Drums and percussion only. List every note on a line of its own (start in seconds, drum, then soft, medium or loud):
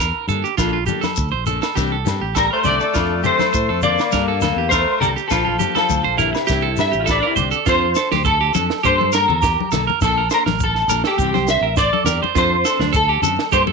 0.00 low agogo medium
0.00 shekere medium
0.29 low conga medium
0.29 shekere medium
0.45 shekere soft
0.58 kick medium
0.58 snare medium
0.58 low agogo medium
0.58 shekere medium
0.87 high conga medium
0.87 low conga medium
0.87 shekere medium
1.03 snare medium
1.03 high conga medium
1.03 low agogo medium
1.03 shekere soft
1.16 kick medium
1.16 shekere medium
1.46 low conga medium
1.46 shekere medium
1.62 snare medium
1.62 low agogo medium
1.62 shekere soft
1.77 kick medium
1.77 snare medium
1.77 shekere medium
2.06 snare medium
2.06 high conga medium
2.06 low agogo medium
2.06 shekere medium
2.36 kick medium
2.36 snare medium
2.36 low agogo medium
2.36 shekere medium
2.64 snare soft
2.64 low conga medium
2.64 shekere medium
2.80 shekere soft
2.94 kick medium
2.94 snare medium
2.94 low agogo medium
2.94 shekere medium
3.24 high conga medium
3.24 low conga medium
3.24 shekere medium
3.39 snare medium
3.39 high conga medium
3.39 low agogo medium
3.39 shekere soft
3.54 kick medium
3.54 shekere medium
3.82 low conga medium
3.82 shekere medium
3.98 snare medium
3.98 low agogo medium
3.98 shekere soft
4.12 kick medium
4.12 snare medium
4.12 shekere medium
4.41 snare medium
4.41 high conga medium
4.41 low agogo medium
4.41 shekere medium
4.72 kick medium
4.72 snare medium
4.72 low agogo medium
4.72 shekere medium
5.02 low conga medium
5.02 shekere medium
5.17 shekere soft
5.30 kick medium
5.30 snare medium
5.30 low agogo medium
5.30 shekere medium
5.47 high conga medium
5.60 high conga medium
5.60 low conga medium
5.60 shekere medium
5.75 snare medium
5.75 high conga medium
5.75 low agogo medium
5.75 shekere soft
5.89 kick medium
5.89 high conga medium
5.89 shekere medium
6.19 low conga medium
6.19 shekere medium
6.35 snare medium
6.35 low agogo medium
6.35 shekere soft
6.48 kick medium
6.48 snare medium
6.48 shekere medium
6.77 snare medium
6.77 high conga medium
6.77 low agogo medium
6.77 shekere medium
6.93 shekere soft
7.07 kick medium
7.07 snare medium
7.07 low agogo medium
7.07 shekere medium
7.36 low conga medium
7.36 shekere medium
7.52 shekere soft
7.66 kick medium
7.66 snare medium
7.66 shekere medium
7.95 snare medium
7.95 shekere medium
8.11 snare medium
8.11 high conga medium
8.25 kick loud
8.25 shekere medium
8.54 high conga medium
8.54 low conga medium
8.54 shekere medium
8.70 snare medium
8.84 kick medium
8.84 shekere medium
9.01 high conga medium
9.13 snare medium
9.13 shekere medium
9.30 low conga medium
9.42 kick loud
9.42 snare medium
9.42 shekere loud
9.60 high conga medium
9.72 snare medium
9.72 low conga medium
9.72 shekere medium
9.90 high conga medium
10.01 kick medium
10.01 snare medium
10.01 shekere medium
10.30 snare medium
10.30 shekere medium
10.46 snare medium
10.46 high conga medium
10.60 kick medium
10.60 shekere loud
10.75 snare soft
10.90 high conga medium
10.90 shekere medium
11.04 snare medium
11.19 kick medium
11.19 shekere medium
11.34 snare soft
11.34 high conga medium
11.48 snare medium
11.48 shekere medium
11.77 kick loud
11.77 snare medium
11.77 shekere loud
11.93 high conga medium
12.06 snare medium
12.06 low conga medium
12.06 shekere medium
12.24 high conga medium
12.35 kick medium
12.35 snare medium
12.35 shekere medium
12.65 snare medium
12.65 shekere medium
12.80 snare medium
12.80 high conga medium
12.94 kick medium
12.94 shekere loud
13.23 high conga medium
13.23 low conga medium
13.23 shekere medium
13.39 snare medium
13.52 kick medium
13.52 shekere loud
13.67 high conga medium